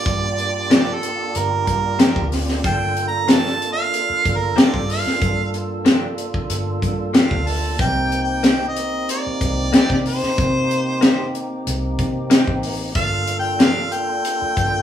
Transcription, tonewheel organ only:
Already playing: A#3 D4 F4 G4
2.64 A#3 D4 F4 A4
7.79 A#3 C4 D#4 G4
12.96 A#3 D4 F4 A4

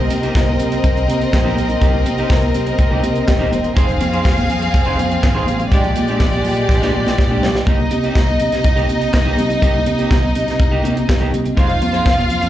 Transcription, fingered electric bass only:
0.11 C3
0.35 C2
0.60 C3
0.84 C2
0.96 C2
1.08 C3
1.34 A#1
1.57 B1
1.82 C2
1.94 C2
2.06 C3
2.30 C2
2.54 C3
2.79 C2
2.91 C2
3.03 C3
3.28 D#1
3.52 E1
3.77 F1
3.89 F1
4.01 F2
4.25 F1
4.50 F2
4.74 F1
4.86 F1
4.99 F2
5.23 G#1
5.47 A1
5.72 A#1
5.83 A#1
5.96 A#2
6.20 A#1
6.45 A#2
6.69 A#1
6.82 A#2
6.94 A#1
7.07 A#2
7.19 A#2
7.42 B1
7.67 C2
7.91 C3
8.15 C2
8.41 C3
8.53 C3
8.65 C2
8.90 C3
9.14 C2
9.38 C3
9.63 C2
9.87 C3
10.11 C2
10.36 C3
10.48 C3
10.60 C2
10.84 C3
11.09 C2
11.33 C3
11.58 F1
11.82 F2
12.06 F1
12.30 F2
12.43 F2

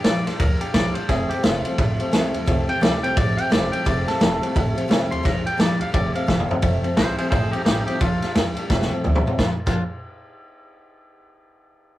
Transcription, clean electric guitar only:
0.05 D5
0.27 C5
0.40 A#4
0.61 G4
0.74 D5
0.94 C5
1.09 G#4
1.29 G4
1.44 F4
2.69 G5
2.82 D5
3.03 G5
3.17 D5
3.37 G5
3.52 D5
3.72 G5
3.86 D5
4.08 A4
5.11 C6
5.25 A#5
5.46 G5
5.60 D5
5.82 F5
5.94 D5
6.16 F5
6.97 G#4 C5
7.18 G#4 C5
7.30 G#4 C5
7.51 D#4 G4
7.65 D#4 G4
7.86 D#4 G4
8.01 F4
9.39 F4
9.67 F4

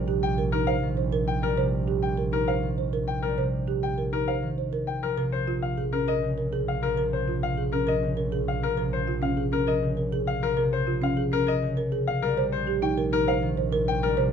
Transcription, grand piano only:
0.23 G5
0.52 A#4
0.67 F5
1.28 G5
1.43 A#4
2.03 G5
2.33 A#4
2.48 F5
3.08 G5
3.23 A#4
3.83 G5
4.13 A#4
4.28 F5
4.87 G5
5.03 A#4
5.32 C5
5.62 F5
5.93 A#4
6.08 D#5
6.68 F5
6.83 A#4
7.13 C5
7.43 F5
7.73 A#4
7.88 D#5
8.48 F5
8.63 A#4
8.93 C5
9.22 F5
9.53 A#4
9.68 D#5
10.27 F5
10.43 A#4
10.73 C5
11.03 F5
11.33 A#4
11.48 D#5
12.07 F5
12.22 A#4
12.52 C5
12.82 G5
13.13 A#4
13.28 F5
13.88 G5
14.03 A#4

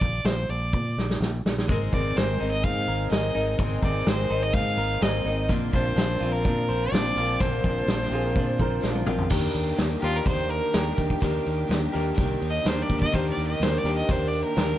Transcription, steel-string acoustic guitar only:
1.70 G#3 C4 D#4 A#4
1.93 C4 D#4 A#4
2.18 G#3 C4 D#4 A#4
2.40 C4 D#4 A#4
3.10 G#3 C4 D#4 A#4
3.35 C4 D#4 A#4
3.59 G#3 C4 D#4 A#4
3.82 C4 D#4 A#4
4.07 G#3 C4 D#4 A#4
4.30 C4 D#4 A#4
5.01 G#3 C4 D#4 A#4
5.25 C4 D#4 A#4
5.50 A#2 D3 F3 A#3 C4 F4
5.74 F3 A#3 C4 F4
5.98 F3 A#3 C4 F4
6.22 F3 A#3 C4 F4
6.92 F3 A#3 C4 F4
7.16 F3 A#3 C4 F4
7.41 A#2 D3 F3 A#3 C4 F4
7.63 F3 A#3 C4 F4
7.88 F3 A#3 C4 F4
8.11 F3 A#3 C4 F4
8.81 F3 A#3 C4 F4
9.06 F3 A#3 C4 F4
9.30 D#3 A#3 D4 G4
9.77 D#3 A#3 D4 G4
10.00 A#3 D4 G4
10.24 D#3 A#3 D4 G4
10.72 D#3 A#3 D4 G4
10.96 A#3 D4 G4
11.20 D#3 A#3 D4 G4
11.68 D#3 A#3 D4 G4
11.92 A#3 D4 G4
12.14 D#3 A#3 D4 G4
12.63 D#3 A#3 D4 G4
13.12 D#3 A#3 D4 G4
13.60 D#3 A#3 D4 G4
13.86 A#3 D4 G4
14.10 D#3 A#3 D4 G4
14.56 D#3 A#3 D4 G4

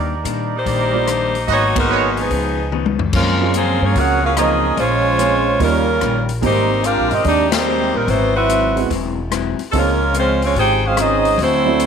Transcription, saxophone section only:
0.56 A#3 D#4 G4 C5
1.51 A#3 D#4 F#4 C#5
1.78 G#3 D#4 F#4 A#4
2.19 F3 B3 D#4 G#4
3.15 G#3 C#4 F4 A#4
3.56 A#3 F4 G#4 C5
3.83 A#3 F4 G#4 C#5
3.97 C#4 G#4 A#4 F#5
4.24 C#4 G#4 A#4 F5
4.38 C#4 G#4 A#4 D#5
4.79 G#3 F4 C5 C#5
5.62 G3 C#4 F4 A#4
6.45 A#3 D#4 G4 C5
6.85 D4 G4 A#4 F5
7.13 C4 G4 A#4 D#5
7.27 A#3 D#4 G4 D5
7.54 A#3 D#4 G4 C5
7.96 G3 C4 D#4 A#4
8.08 F#3 B3 E4 C5
8.36 C4 F#4 B4 E5
9.71 A4
9.78 G#3 C#4 F4 A#4
10.18 G#3 C#4 F4 C5
10.45 G#3 C4 F4 C#5
10.59 D#4 G#4 C5 G5
10.85 C#4 G#4 C5 F5
10.99 C#4 G#4 C5 D#5
11.41 A3 E4 F#4 C5

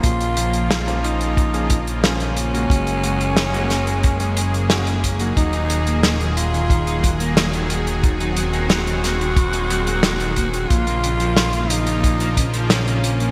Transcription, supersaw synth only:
Already playing: A#3
0.04 C#3 F3 F4
2.70 G#3 G#4
5.37 D#3 F#3
8.04 C4
10.70 C#3 F3 A#3 F4

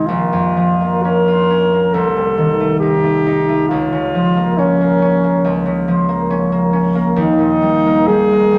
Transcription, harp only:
Already playing: C2 C3 D#3 G#3 C4
0.08 A#1
0.33 F2
0.57 F3
0.81 A#3
1.05 C#4
1.28 F4
1.50 C#4
1.73 A#3
1.94 C2
2.17 C3
2.38 D#3
2.60 A3
2.82 D#4
3.04 A3
3.26 D#4
3.49 A3
3.71 C#2
3.92 C#3
4.15 F3
4.37 A#3
4.58 C#4
4.81 A#3
5.02 C#4
5.24 A#3
5.45 C#2
5.66 C#3
5.88 F3
6.09 A#3
6.30 C#4
6.52 A#3
6.73 C#4
6.95 A#3
7.16 D#2
7.39 A#2
7.62 G3
7.86 A#3
8.09 G3
8.31 A#3
8.52 G3

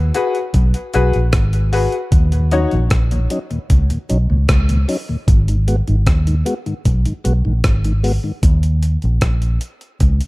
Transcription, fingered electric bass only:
Already playing: D#2
0.55 B1
0.95 B1
1.16 A#1
1.34 G#1
2.13 D#2
2.73 A#1
2.92 A#1
3.71 C#2
4.11 B1
4.31 C#2
4.50 C#2
5.29 G#1
5.89 G#1
6.07 D#2
6.86 B1
7.26 B1
7.46 A#1
7.65 G#1
8.44 D#2
9.04 A#1
9.23 A#1
10.01 C#2

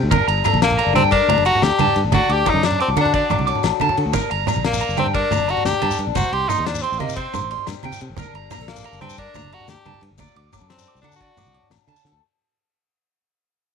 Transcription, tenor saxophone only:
0.63 A#3
0.95 C4
1.12 D4
1.46 F#4
1.63 G4
2.14 F#4
2.32 G4
2.50 D#4
2.65 D4
2.81 C4
3.01 D4
3.15 D4
4.66 A#3
4.99 C4
5.15 D4
5.50 F#4
5.66 G4
6.16 F#4
6.33 G4
6.49 D#4
6.65 D4
6.82 C4
6.99 A#3
7.16 C4
8.68 A#3
9.01 C4
9.19 D4
9.54 F#4
9.70 G4
10.70 C4
11.02 D4
11.16 F#4

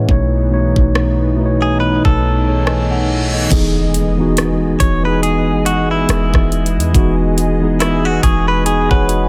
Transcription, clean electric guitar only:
1.62 G#4
1.80 B4
2.05 A4
4.80 C#5
5.05 B4
5.23 G#4
5.66 F#4
5.91 E4
7.80 E4
8.05 F#4
8.23 G#4
8.48 B4
8.66 G#4
8.91 B4

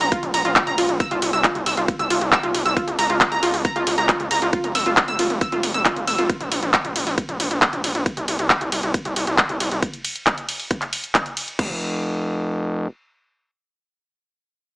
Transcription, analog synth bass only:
0.01 A#1
0.23 A#1
0.34 A#1
0.45 A#1
0.67 A#1
0.78 A#1
0.89 A#1
1.11 C2
1.22 C2
1.33 C2
1.55 C2
1.66 C2
1.77 C2
1.99 C2
2.10 C2
2.21 C2
2.43 C2
2.54 C2
2.65 C2
2.88 C#2
2.99 C#2
3.10 C#2
3.32 C#2
3.43 C#2
3.54 C#2
3.76 C#2
3.87 C#2
3.98 C#2
4.20 C#2
4.31 C#2
4.42 C#2
4.64 F1
4.75 F1
4.86 F1
5.08 F1
5.19 F1
5.30 F1
5.52 F1
5.63 F1
5.74 F1
5.96 F1
6.07 F1
6.19 F1
6.41 A#1
6.52 A#1
6.63 A#1
6.85 A#1
6.96 A#1
7.07 A#1
7.29 A#1
7.40 A#1
7.51 A#1
7.73 A#1
7.84 A#1
7.95 A#1
8.17 C2
8.28 C2
8.39 C2
8.61 C2
8.72 C2
8.83 C2
9.05 C2
9.17 C2
9.27 C2
9.50 C2
9.61 C2
9.72 C2
11.59 F1

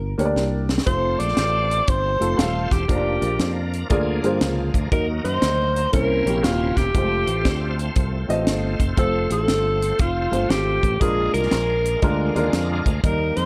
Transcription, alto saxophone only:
Already playing: A#4
0.87 C5
1.19 D5
1.89 C5
2.39 F4
2.72 G4
4.92 A#4
5.25 C5
5.93 A#4
6.44 F4
6.77 G4
8.99 A4
9.32 A4
10.00 F4
10.50 G4
11.00 G#4
11.33 A#4
13.04 A#4
13.37 C5

